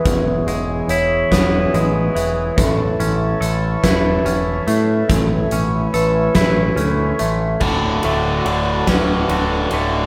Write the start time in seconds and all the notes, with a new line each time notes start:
Already playing: E3 G#3 B3 E4 G#4 B4 G#5
0.05 E1 E2 C#5, kick, closed hi-hat
0.47 E1 G#3, closed hi-hat
0.88 E1 E4 C#5, closed hi-hat
1.31 E1 B3, kick, snare, closed hi-hat
1.73 A1 G#3 B4, closed hi-hat
2.15 E1 E3, closed hi-hat
2.56 A1 A2 E4 A4 B4 A5, kick, closed hi-hat
3.00 A1 C#4, closed hi-hat
3.41 A1 A4, closed hi-hat
3.84 E1 E4 B4, kick, snare, closed hi-hat
4.25 E1 C#4, closed hi-hat
4.67 A2 A3 A4, closed hi-hat
5.08 A1 A2 G#5, kick, closed hi-hat
5.51 A1 C#4, closed hi-hat
5.93 A1 A4 B4, closed hi-hat
6.35 A1 E4, kick, snare, closed hi-hat
6.76 D2 C#4 A4, closed hi-hat
7.19 A1 A3, closed hi-hat
7.60 D1 D2 A2 D3 F#4 A4 C#5 F#5 A5, kick, crash
8.03 D1 D2 A2 D3 A3, ride
8.45 D1 D2 A2 D3, ride
8.87 D1 D2 A2 D3 C#4 B4, kick, snare, ride
9.28 D1 D2 A2 D3 F#4, ride
9.70 D1 D2 A2 D3 A3 A4, ride